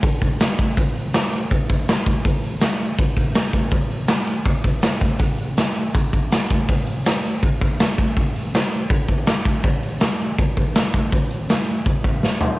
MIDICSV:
0, 0, Header, 1, 2, 480
1, 0, Start_track
1, 0, Tempo, 369686
1, 1000, Time_signature, 4, 2, 24, 8
1, 16349, End_track
2, 0, Start_track
2, 0, Title_t, "Drums"
2, 38, Note_on_c, 9, 36, 122
2, 40, Note_on_c, 9, 46, 87
2, 168, Note_off_c, 9, 36, 0
2, 170, Note_off_c, 9, 46, 0
2, 281, Note_on_c, 9, 36, 80
2, 291, Note_on_c, 9, 46, 58
2, 411, Note_off_c, 9, 36, 0
2, 421, Note_off_c, 9, 46, 0
2, 519, Note_on_c, 9, 46, 78
2, 530, Note_on_c, 9, 38, 118
2, 649, Note_off_c, 9, 46, 0
2, 660, Note_off_c, 9, 38, 0
2, 764, Note_on_c, 9, 36, 85
2, 772, Note_on_c, 9, 46, 61
2, 894, Note_off_c, 9, 36, 0
2, 902, Note_off_c, 9, 46, 0
2, 1001, Note_on_c, 9, 46, 74
2, 1003, Note_on_c, 9, 36, 104
2, 1131, Note_off_c, 9, 46, 0
2, 1133, Note_off_c, 9, 36, 0
2, 1238, Note_on_c, 9, 46, 65
2, 1367, Note_off_c, 9, 46, 0
2, 1474, Note_on_c, 9, 46, 80
2, 1485, Note_on_c, 9, 38, 104
2, 1604, Note_off_c, 9, 46, 0
2, 1615, Note_off_c, 9, 38, 0
2, 1725, Note_on_c, 9, 46, 60
2, 1855, Note_off_c, 9, 46, 0
2, 1962, Note_on_c, 9, 46, 79
2, 1963, Note_on_c, 9, 36, 106
2, 2092, Note_off_c, 9, 46, 0
2, 2093, Note_off_c, 9, 36, 0
2, 2204, Note_on_c, 9, 36, 82
2, 2204, Note_on_c, 9, 46, 55
2, 2334, Note_off_c, 9, 36, 0
2, 2334, Note_off_c, 9, 46, 0
2, 2445, Note_on_c, 9, 46, 80
2, 2455, Note_on_c, 9, 38, 118
2, 2574, Note_off_c, 9, 46, 0
2, 2585, Note_off_c, 9, 38, 0
2, 2681, Note_on_c, 9, 36, 90
2, 2684, Note_on_c, 9, 46, 54
2, 2811, Note_off_c, 9, 36, 0
2, 2814, Note_off_c, 9, 46, 0
2, 2922, Note_on_c, 9, 36, 102
2, 2923, Note_on_c, 9, 46, 74
2, 3051, Note_off_c, 9, 36, 0
2, 3053, Note_off_c, 9, 46, 0
2, 3165, Note_on_c, 9, 46, 61
2, 3295, Note_off_c, 9, 46, 0
2, 3384, Note_on_c, 9, 46, 80
2, 3394, Note_on_c, 9, 38, 108
2, 3514, Note_off_c, 9, 46, 0
2, 3524, Note_off_c, 9, 38, 0
2, 3635, Note_on_c, 9, 46, 58
2, 3765, Note_off_c, 9, 46, 0
2, 3875, Note_on_c, 9, 36, 110
2, 3879, Note_on_c, 9, 46, 81
2, 4005, Note_off_c, 9, 36, 0
2, 4008, Note_off_c, 9, 46, 0
2, 4103, Note_on_c, 9, 46, 59
2, 4110, Note_on_c, 9, 36, 82
2, 4233, Note_off_c, 9, 46, 0
2, 4240, Note_off_c, 9, 36, 0
2, 4344, Note_on_c, 9, 46, 84
2, 4354, Note_on_c, 9, 38, 117
2, 4473, Note_off_c, 9, 46, 0
2, 4484, Note_off_c, 9, 38, 0
2, 4575, Note_on_c, 9, 46, 60
2, 4587, Note_on_c, 9, 36, 91
2, 4705, Note_off_c, 9, 46, 0
2, 4717, Note_off_c, 9, 36, 0
2, 4817, Note_on_c, 9, 46, 80
2, 4825, Note_on_c, 9, 36, 112
2, 4947, Note_off_c, 9, 46, 0
2, 4955, Note_off_c, 9, 36, 0
2, 5063, Note_on_c, 9, 46, 65
2, 5193, Note_off_c, 9, 46, 0
2, 5291, Note_on_c, 9, 46, 90
2, 5302, Note_on_c, 9, 38, 123
2, 5421, Note_off_c, 9, 46, 0
2, 5431, Note_off_c, 9, 38, 0
2, 5543, Note_on_c, 9, 46, 68
2, 5673, Note_off_c, 9, 46, 0
2, 5780, Note_on_c, 9, 46, 79
2, 5784, Note_on_c, 9, 36, 103
2, 5909, Note_off_c, 9, 46, 0
2, 5914, Note_off_c, 9, 36, 0
2, 6024, Note_on_c, 9, 46, 60
2, 6027, Note_on_c, 9, 36, 88
2, 6153, Note_off_c, 9, 46, 0
2, 6157, Note_off_c, 9, 36, 0
2, 6261, Note_on_c, 9, 46, 82
2, 6271, Note_on_c, 9, 38, 127
2, 6391, Note_off_c, 9, 46, 0
2, 6401, Note_off_c, 9, 38, 0
2, 6505, Note_on_c, 9, 46, 58
2, 6510, Note_on_c, 9, 36, 89
2, 6635, Note_off_c, 9, 46, 0
2, 6639, Note_off_c, 9, 36, 0
2, 6737, Note_on_c, 9, 46, 80
2, 6748, Note_on_c, 9, 36, 108
2, 6867, Note_off_c, 9, 46, 0
2, 6878, Note_off_c, 9, 36, 0
2, 6991, Note_on_c, 9, 46, 55
2, 7121, Note_off_c, 9, 46, 0
2, 7234, Note_on_c, 9, 46, 71
2, 7244, Note_on_c, 9, 38, 114
2, 7364, Note_off_c, 9, 46, 0
2, 7374, Note_off_c, 9, 38, 0
2, 7472, Note_on_c, 9, 46, 59
2, 7602, Note_off_c, 9, 46, 0
2, 7721, Note_on_c, 9, 36, 114
2, 7722, Note_on_c, 9, 46, 75
2, 7851, Note_off_c, 9, 36, 0
2, 7852, Note_off_c, 9, 46, 0
2, 7962, Note_on_c, 9, 36, 89
2, 7964, Note_on_c, 9, 46, 53
2, 8091, Note_off_c, 9, 36, 0
2, 8094, Note_off_c, 9, 46, 0
2, 8202, Note_on_c, 9, 46, 82
2, 8212, Note_on_c, 9, 38, 123
2, 8332, Note_off_c, 9, 46, 0
2, 8342, Note_off_c, 9, 38, 0
2, 8446, Note_on_c, 9, 36, 93
2, 8453, Note_on_c, 9, 46, 56
2, 8576, Note_off_c, 9, 36, 0
2, 8583, Note_off_c, 9, 46, 0
2, 8677, Note_on_c, 9, 46, 77
2, 8684, Note_on_c, 9, 36, 107
2, 8807, Note_off_c, 9, 46, 0
2, 8814, Note_off_c, 9, 36, 0
2, 8920, Note_on_c, 9, 46, 64
2, 9050, Note_off_c, 9, 46, 0
2, 9162, Note_on_c, 9, 46, 79
2, 9173, Note_on_c, 9, 38, 109
2, 9292, Note_off_c, 9, 46, 0
2, 9302, Note_off_c, 9, 38, 0
2, 9414, Note_on_c, 9, 46, 61
2, 9543, Note_off_c, 9, 46, 0
2, 9646, Note_on_c, 9, 36, 105
2, 9646, Note_on_c, 9, 46, 85
2, 9775, Note_off_c, 9, 36, 0
2, 9776, Note_off_c, 9, 46, 0
2, 9887, Note_on_c, 9, 36, 87
2, 9887, Note_on_c, 9, 46, 62
2, 10016, Note_off_c, 9, 36, 0
2, 10017, Note_off_c, 9, 46, 0
2, 10122, Note_on_c, 9, 46, 82
2, 10132, Note_on_c, 9, 38, 122
2, 10251, Note_off_c, 9, 46, 0
2, 10262, Note_off_c, 9, 38, 0
2, 10365, Note_on_c, 9, 46, 64
2, 10366, Note_on_c, 9, 36, 87
2, 10495, Note_off_c, 9, 36, 0
2, 10495, Note_off_c, 9, 46, 0
2, 10605, Note_on_c, 9, 36, 102
2, 10609, Note_on_c, 9, 46, 78
2, 10735, Note_off_c, 9, 36, 0
2, 10739, Note_off_c, 9, 46, 0
2, 10857, Note_on_c, 9, 46, 57
2, 10987, Note_off_c, 9, 46, 0
2, 11090, Note_on_c, 9, 46, 74
2, 11101, Note_on_c, 9, 38, 110
2, 11220, Note_off_c, 9, 46, 0
2, 11231, Note_off_c, 9, 38, 0
2, 11325, Note_on_c, 9, 46, 58
2, 11455, Note_off_c, 9, 46, 0
2, 11554, Note_on_c, 9, 46, 81
2, 11557, Note_on_c, 9, 36, 117
2, 11684, Note_off_c, 9, 46, 0
2, 11687, Note_off_c, 9, 36, 0
2, 11789, Note_on_c, 9, 46, 51
2, 11796, Note_on_c, 9, 36, 89
2, 11919, Note_off_c, 9, 46, 0
2, 11926, Note_off_c, 9, 36, 0
2, 12030, Note_on_c, 9, 46, 73
2, 12040, Note_on_c, 9, 38, 119
2, 12160, Note_off_c, 9, 46, 0
2, 12170, Note_off_c, 9, 38, 0
2, 12267, Note_on_c, 9, 46, 58
2, 12276, Note_on_c, 9, 36, 92
2, 12396, Note_off_c, 9, 46, 0
2, 12406, Note_off_c, 9, 36, 0
2, 12511, Note_on_c, 9, 46, 77
2, 12516, Note_on_c, 9, 36, 114
2, 12641, Note_off_c, 9, 46, 0
2, 12646, Note_off_c, 9, 36, 0
2, 12764, Note_on_c, 9, 46, 59
2, 12893, Note_off_c, 9, 46, 0
2, 12989, Note_on_c, 9, 46, 76
2, 13000, Note_on_c, 9, 38, 117
2, 13119, Note_off_c, 9, 46, 0
2, 13130, Note_off_c, 9, 38, 0
2, 13240, Note_on_c, 9, 46, 60
2, 13370, Note_off_c, 9, 46, 0
2, 13483, Note_on_c, 9, 36, 115
2, 13485, Note_on_c, 9, 46, 84
2, 13613, Note_off_c, 9, 36, 0
2, 13614, Note_off_c, 9, 46, 0
2, 13719, Note_on_c, 9, 46, 59
2, 13724, Note_on_c, 9, 36, 87
2, 13849, Note_off_c, 9, 46, 0
2, 13854, Note_off_c, 9, 36, 0
2, 13956, Note_on_c, 9, 46, 79
2, 13966, Note_on_c, 9, 38, 121
2, 14086, Note_off_c, 9, 46, 0
2, 14096, Note_off_c, 9, 38, 0
2, 14194, Note_on_c, 9, 46, 63
2, 14201, Note_on_c, 9, 36, 85
2, 14324, Note_off_c, 9, 46, 0
2, 14331, Note_off_c, 9, 36, 0
2, 14436, Note_on_c, 9, 46, 75
2, 14442, Note_on_c, 9, 36, 113
2, 14566, Note_off_c, 9, 46, 0
2, 14572, Note_off_c, 9, 36, 0
2, 14678, Note_on_c, 9, 46, 57
2, 14808, Note_off_c, 9, 46, 0
2, 14920, Note_on_c, 9, 46, 78
2, 14931, Note_on_c, 9, 38, 110
2, 15050, Note_off_c, 9, 46, 0
2, 15060, Note_off_c, 9, 38, 0
2, 15160, Note_on_c, 9, 46, 60
2, 15290, Note_off_c, 9, 46, 0
2, 15391, Note_on_c, 9, 46, 68
2, 15398, Note_on_c, 9, 36, 112
2, 15521, Note_off_c, 9, 46, 0
2, 15528, Note_off_c, 9, 36, 0
2, 15633, Note_on_c, 9, 46, 52
2, 15636, Note_on_c, 9, 36, 88
2, 15763, Note_off_c, 9, 46, 0
2, 15766, Note_off_c, 9, 36, 0
2, 15881, Note_on_c, 9, 38, 69
2, 16011, Note_off_c, 9, 38, 0
2, 16107, Note_on_c, 9, 43, 86
2, 16237, Note_off_c, 9, 43, 0
2, 16349, End_track
0, 0, End_of_file